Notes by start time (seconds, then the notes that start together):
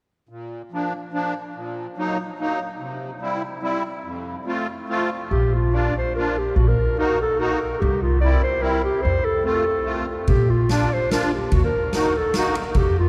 0.29 A#2
0.71 F3 A#3 D4
1.12 F3 A#3 D4
1.55 A#2
1.97 F#3 A#3 D#4
2.39 F#3 A#3 D#4
2.79 C3
3.20 G3 C4 E4
3.61 G3 C4 E4
4.04 F2
4.45 A3 C4 F4
4.88 A3 C4 F4
5.31 A#1 G4
5.54 F4
5.72 A#3 D4 F4 D5
5.98 C5
6.16 A#3 D4 F4 A#4
6.39 G4
6.56 A#1 F#4
6.68 A#4
6.97 A#3 D#4 F#4 A#4
7.22 A4
7.39 A#3 D#4 F#4 A#4
7.80 C2 G4
8.02 F4
8.21 G3 C4 E4 D5
8.43 C5
8.60 G3 C4 E4 A#4
8.84 G4
9.02 F2 C5
9.25 A4
9.43 A3 C4 F4 A4
9.83 A3 C4 F4
10.27 A#1 G4, kick, ride
10.50 F4
10.69 A#3 D4 F4 D5, snare, ride
10.93 C5
11.11 A#3 D4 F4 A#4, snare, ride
11.33 G4
11.52 D#2 F#4, kick, ride
11.64 A#4
11.93 A#3 D#4 F#4 A#4, snare, ride
12.18 A4
12.34 A#3 D#4 F#4 A#4, snare, ride
12.55 ride
12.75 F2 G4, kick, ride
12.99 F4